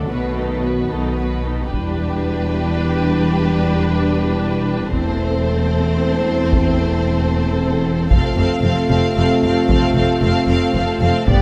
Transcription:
Already playing: trombone section F#3, french horn section A3
0.08 double bass section B1, cello section B2, trombone section D#3, viola section B3, violin section F#4 B4, french horn section F#4
0.36 viola section D#4, violin section A4 B4
0.63 viola section B3, violin section F#4 B4
0.90 double bass section B1, cello section B2, viola section D#4, violin section A4 B4
1.17 viola section B3, violin section F#4 B4
1.44 viola section D#4, violin section A4 B4
1.71 double bass section E1, cello section E2, trombone section E3 G3, french horn section D4 E4, viola section D4, violin section G4 B4, taiko
4.92 double bass section E1, cello section E2, trombone section E3 A3, french horn section C4 E4, viola section C4, violin section A4 C5, taiko
6.52 taiko
8.10 double bass section F1, cello section F2, trombone section C3 A3, french horn section C4 F4, viola section C4, violin section A4 F5, taiko
8.37 double bass section F1, cello section F2, viola section C4, violin section A4 F5
8.63 double bass section F1, cello section F2, viola section C4, violin section A4 F5
8.89 double bass section F1, cello section F2, viola section C4, violin section A4 F5
9.16 double bass section F1, cello section F2, viola section C4, violin section A4 F5
9.42 double bass section F1, cello section F2, viola section C4, violin section A4 F5
9.69 double bass section F1, cello section F2, viola section C4, violin section A4 F5, taiko
9.95 double bass section F1, cello section F2, viola section C4, violin section A4 F5
10.21 double bass section F1, cello section F2, viola section C4, violin section A4 F5
10.48 double bass section F1, cello section F2, viola section C4, violin section A4 F5
10.75 double bass section F1, cello section F2, viola section C4, violin section A4 F5
11.01 double bass section F1, cello section F2, viola section C4, violin section A4 F5
11.27 double bass section G1, cello section G2, trombone section D3 G3, viola section B3, french horn section B3 G4, violin section G4 D5, taiko

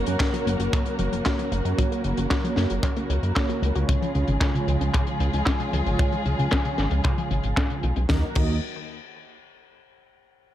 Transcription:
Already playing: string section C#3 F#3 A#3 F#4 A#4, analog polysynth A#3 C#4 F#4 C#5
0.06 analog synth bass F#2, synth arpeggio sound F#3, closed hi-hat
0.20 synth arpeggio sound F#4, kick, snare, clap, closed hi-hat
0.33 synth arpeggio sound F#3, analog polysynth A#3 C#4 F#4 C#5, closed hi-hat
0.47 analog synth bass F#1, synth arpeggio sound A#3, closed hi-hat
0.60 analog synth bass F#1, synth arpeggio sound F#4, closed hi-hat
0.73 synth arpeggio sound F#3, kick, clap, closed hi-hat
0.86 analog polysynth A#3 C#4 F#4 C#5, synth arpeggio sound A#3, closed hi-hat
0.99 analog synth bass F#1, synth arpeggio sound F#3, closed hi-hat
1.12 analog synth bass F#1, synth arpeggio sound F#3, closed hi-hat
1.25 analog polysynth A#3 C#4 F#4 C#5, synth arpeggio sound F#4, kick, snare, clap, closed hi-hat
1.39 synth arpeggio sound F#3, closed hi-hat
1.52 analog synth bass F#1, synth arpeggio sound A#3, closed hi-hat
1.65 analog synth bass F#2, analog polysynth A#3 C#4 F#4 C#5, synth arpeggio sound F#4, closed hi-hat
1.78 synth arpeggio sound F#3, kick, closed hi-hat
1.91 synth arpeggio sound A#3, closed hi-hat
2.04 analog synth bass F#1, synth arpeggio sound F#3, analog polysynth A#3 C#4 F#4 C#5, closed hi-hat
2.17 analog synth bass F#1, synth arpeggio sound F#3, closed hi-hat
2.30 synth arpeggio sound F#4, kick, snare, clap, closed hi-hat
2.44 synth arpeggio sound F#3, analog polysynth A#3 C#4 F#4 C#5, closed hi-hat
2.56 analog synth bass F#2, synth arpeggio sound A#3, snare, closed hi-hat
2.70 analog synth bass F#1, synth arpeggio sound F#4, closed hi-hat
2.83 synth arpeggio sound F#3, kick, clap, closed hi-hat
2.96 analog polysynth A#3 C#4 F#4 C#5, synth arpeggio sound A#3, closed hi-hat
3.10 analog synth bass C#2, synth arpeggio sound F#3, closed hi-hat
3.23 analog synth bass F#2, synth arpeggio sound F#3, closed hi-hat
3.36 analog polysynth A#3 C#4 F#4 C#5, synth arpeggio sound F#4, kick, snare, clap, closed hi-hat
3.49 synth arpeggio sound F#3, closed hi-hat
3.62 analog synth bass C#2, synth arpeggio sound A#3, closed hi-hat
3.75 analog synth bass C#2, analog polysynth C#3 G#3 C#4 F4 C#5, synth arpeggio sound F#4, closed hi-hat
3.89 synth arpeggio sound C#3, string section F3 G#3 F4 G#4, kick, closed hi-hat
4.02 synth arpeggio sound F3, closed hi-hat
4.15 analog synth bass C#2, analog polysynth C#3 G#3 C#4 F4 C#5, synth arpeggio sound C#3, closed hi-hat
4.28 analog synth bass G#1, synth arpeggio sound C#3, closed hi-hat
4.41 synth arpeggio sound C#4, kick, snare, clap, closed hi-hat
4.55 analog polysynth C#3 G#3 C#4 F4 C#5, synth arpeggio sound C#3, closed hi-hat
4.68 analog synth bass C#2, synth arpeggio sound F3, closed hi-hat
4.81 analog synth bass C#2, synth arpeggio sound C#4, closed hi-hat
4.94 synth arpeggio sound C#3, kick, clap, closed hi-hat
5.07 analog polysynth C#3 G#3 C#4 F4 C#5, synth arpeggio sound F3, closed hi-hat
5.20 analog synth bass C#2, synth arpeggio sound C#3, closed hi-hat
5.33 analog synth bass C#2, synth arpeggio sound C#3, closed hi-hat
5.46 analog polysynth C#3 G#3 C#4 F4 C#5, synth arpeggio sound C#4, kick, snare, clap, closed hi-hat
5.60 synth arpeggio sound C#3, closed hi-hat
5.73 analog synth bass C#2, synth arpeggio sound F3, closed hi-hat
5.86 analog synth bass G#1, analog polysynth C#3 G#3 C#4 F4 C#5, synth arpeggio sound C#4, closed hi-hat
5.99 synth arpeggio sound C#3, kick, closed hi-hat
6.12 synth arpeggio sound F3, closed hi-hat
6.25 analog synth bass C#2, analog polysynth C#3 G#3 C#4 F4 C#5, synth arpeggio sound C#3, closed hi-hat
6.39 analog synth bass C#2, synth arpeggio sound C#3, closed hi-hat
6.51 synth arpeggio sound C#4, kick, snare, clap, closed hi-hat
6.65 synth arpeggio sound C#3, analog polysynth C#3 G#3 C#4 F4 C#5, closed hi-hat
6.78 analog synth bass G#1, synth arpeggio sound F3, snare, closed hi-hat
6.91 analog synth bass C#2, synth arpeggio sound C#4, closed hi-hat
7.04 synth arpeggio sound C#3, kick, clap, closed hi-hat
7.18 analog polysynth C#3 G#3 C#4 F4 C#5, synth arpeggio sound F3, closed hi-hat
7.31 analog synth bass G#1, synth arpeggio sound C#3, closed hi-hat
7.43 analog synth bass G#1, synth arpeggio sound C#3, closed hi-hat
7.57 synth arpeggio sound C#4, kick, snare, clap, closed hi-hat
7.70 analog polysynth C#3 G#3 C#4 F4 B4, synth arpeggio sound C#3, closed hi-hat
7.83 analog synth bass B1, synth arpeggio sound F3, closed hi-hat
7.96 analog synth bass B1, synth arpeggio sound C#4, closed hi-hat
8.09 analog synth bass D#2, string section D#3 F#3 A#3 F#4 A#4, synth arpeggio sound D#3, analog polysynth A#3 D#4 F#4 D#5, kick, snare
8.35 analog synth bass D#2, synth arpeggio sound D#3, analog polysynth A#3 D#4 F#4 D#5, kick, crash

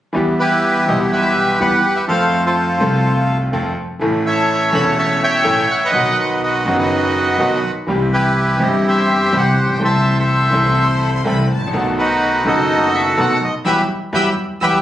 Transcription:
0.13 grand piano E2 E3 G3 B3 G4, upright bass E2, bandoneon G3 B3 E4
0.40 bandoneon E4 G4 B4
0.86 grand piano B1 B2 E3 G3 B3, upright bass B1, bandoneon G3 B3 E4 D#5
0.90 grand piano G4
1.12 bandoneon G4 B4 E5
1.60 upright bass E2, grand piano E2 E3 G3 B3 G4, bandoneon G3 B3 E4 B4 F#5
1.96 bandoneon E5
2.07 upright bass F2, grand piano F2 F3 A3 C4 A4, bandoneon A3 C4 F4 A4 C5 F5
2.45 bandoneon F4 A4 C5
2.78 upright bass C2, grand piano C2 C3 F3 A3 C4 A4, bandoneon A3 C4 F4
3.52 upright bass F2, grand piano F2 F3 A3 C4 A4, bandoneon A3 C4 F4
3.99 upright bass A1, grand piano A1 A2 E3 A3 C#4 A4, bandoneon A3 C#4 E4
4.26 bandoneon A4 C#5 E5
4.72 upright bass E1, grand piano E1 E2 E3 A3 C#4 A4, bandoneon A3 C#4 E4 B5
4.99 bandoneon C#5 E5 A5
5.24 bandoneon C#5 E5 G5
5.44 grand piano A1 A2 E3 A3 C#4 A4, upright bass A1, bandoneon A3 C#4 E4
5.71 bandoneon F#5
5.78 bandoneon G5
5.85 bandoneon B4 D#5 F#5
5.90 grand piano B1 B2 D#3 F#3 B3, upright bass B1, bandoneon B3 D#4 F#4
5.95 grand piano F#4
6.19 bandoneon F#5
6.43 bandoneon F#4 B4 D#5
6.63 grand piano F#1 F#2 D#3 F#3 B3, upright bass F#1, bandoneon B3 D#4 F#4
6.68 grand piano F#4
6.78 bandoneon F#4 B4 D#5
7.38 upright bass B1, grand piano B1 B2 D#3 F#3 B3 F#4, bandoneon B3 D#4 F#4
7.87 upright bass C2, grand piano C2 C3 E3 G3 C4 G4, bandoneon C4 E4 G4
8.13 bandoneon E4 G4 B4
8.57 grand piano G1 G2 E3 G3 C4, upright bass G1, bandoneon C4 E4 G4
8.62 grand piano G4, bandoneon D#5
8.87 bandoneon G4 C5 E5
9.32 grand piano C2 C3 E3 G3 C4 G4, upright bass C2, bandoneon C4 E4 G4
9.37 bandoneon C5 F#5
9.63 grand piano A1, upright bass A1
9.68 grand piano A#1, upright bass A#1, bandoneon G5
9.75 grand piano B1 E3, upright bass B1
9.79 grand piano C2 C3 A3 C4 A4, upright bass C2, bandoneon C4 E4 A4
9.84 bandoneon C5 E5 A5
10.19 bandoneon A4 C5 E5
10.50 grand piano C2 C3 E3 A3 C4 A4, upright bass C2, bandoneon C4 E4 A4
10.79 violin section C6
11.02 violin section B5
11.14 violin section C6
11.24 grand piano C2 C3 E3 A3 C4 A4, upright bass C2, bandoneon C4 E4 A4, violin section B5
11.51 upright bass G#1, violin section A5
11.56 grand piano G#1
11.60 grand piano A1, upright bass A1
11.67 grand piano A#1, upright bass A#1
11.72 grand piano B1 B2 D#3 A3 B3, upright bass B1, bandoneon B3 D#4 A4
11.76 grand piano F#4
11.99 bandoneon D#4 F#4 B4
12.43 grand piano F#1 F#2 D#3 A3 B3, upright bass F#1, bandoneon B3 D#4 A4
12.47 bandoneon F#4 D#5, grand piano F#4
12.94 bandoneon E5
13.17 upright bass B1, grand piano B1 B2 D#3 A3 B3 F#4, bandoneon B3 D#4 A4 F#5
13.44 bandoneon D#5
13.65 upright bass E2, grand piano E3 F#3 G3, bandoneon E4 F#4 G4 B4 E5, violin section G5 B5 E6
14.13 upright bass E2, grand piano E3 F#3 G3, bandoneon E4 F#4 G4 B4 E5, violin section G5 B5 E6
14.61 upright bass E2, grand piano E3 F#3 G3, bandoneon E4 F#4 G4 B4 E5, violin section G5 B5 E6

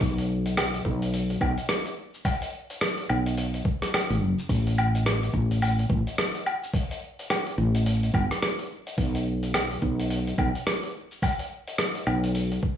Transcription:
0.01 fretless electric bass B1, kick, open hi-hat, cabasa
0.18 open hi-hat, cabasa
0.46 open hi-hat, cabasa
0.57 cross-stick, open hi-hat, cabasa, low woodblock
0.74 open hi-hat, cabasa
0.85 fretless electric bass B1, kick
1.02 open hi-hat, cabasa
1.14 open hi-hat, cabasa
1.30 open hi-hat, cabasa
1.41 fretless electric bass B1, kick, low woodblock
1.58 open hi-hat, cabasa
1.69 cross-stick, open hi-hat, cabasa
1.86 open hi-hat, cabasa
2.14 cabasa
2.25 kick, open hi-hat, cabasa, low woodblock
2.42 open hi-hat, cabasa
2.70 open hi-hat, cabasa
2.81 cross-stick, open hi-hat, cabasa
2.98 open hi-hat, cabasa
3.09 fretless electric bass B1, low woodblock
3.26 open hi-hat, cabasa
3.38 open hi-hat, cabasa
3.54 open hi-hat, cabasa
3.65 kick
3.82 cross-stick, open hi-hat, cabasa
3.94 cross-stick, open hi-hat, cabasa, low woodblock
4.10 fretless electric bass A1, open hi-hat, cabasa
4.22 fretless electric bass F#1
4.39 cabasa
4.49 fretless electric bass A1, kick, open hi-hat, cabasa
4.67 open hi-hat, cabasa
4.78 low woodblock
4.95 open hi-hat, cabasa
5.06 cross-stick, open hi-hat, cabasa
5.23 open hi-hat, cabasa
5.33 fretless electric bass A1, kick
5.51 open hi-hat, cabasa
5.62 open hi-hat, cabasa, low woodblock
5.79 open hi-hat, cabasa
5.90 fretless electric bass A1, kick
6.07 open hi-hat, cabasa
6.18 cross-stick, open hi-hat, cabasa
6.35 open hi-hat, cabasa
6.46 low woodblock
6.64 cabasa
6.74 kick, open hi-hat, cabasa
6.91 open hi-hat, cabasa
7.19 open hi-hat, cabasa
7.30 cross-stick, open hi-hat, cabasa, low woodblock
7.47 open hi-hat, cabasa
7.58 fretless electric bass A1
7.75 open hi-hat, cabasa
7.86 open hi-hat, cabasa
8.03 open hi-hat, cabasa
8.14 fretless electric bass G1, kick, low woodblock
8.31 cross-stick, open hi-hat, cabasa
8.43 cross-stick, open hi-hat, cabasa
8.59 open hi-hat, cabasa
8.87 open hi-hat, cabasa
8.98 fretless electric bass B1, kick, open hi-hat, cabasa
9.15 open hi-hat, cabasa
9.43 open hi-hat, cabasa
9.54 cross-stick, open hi-hat, cabasa, low woodblock
9.71 open hi-hat, cabasa
9.82 fretless electric bass B1, kick
10.00 open hi-hat, cabasa
10.10 open hi-hat, cabasa
10.27 open hi-hat, cabasa
10.38 fretless electric bass B1, kick, low woodblock
10.55 open hi-hat, cabasa
10.67 cross-stick, open hi-hat, cabasa
10.83 open hi-hat, cabasa
11.12 cabasa
11.22 kick, open hi-hat, cabasa, low woodblock
11.39 open hi-hat, cabasa
11.68 open hi-hat, cabasa
11.78 cross-stick, open hi-hat, cabasa
11.95 open hi-hat, cabasa
12.07 fretless electric bass B1, low woodblock
12.24 open hi-hat, cabasa
12.35 open hi-hat, cabasa
12.52 open hi-hat, cabasa
12.63 kick

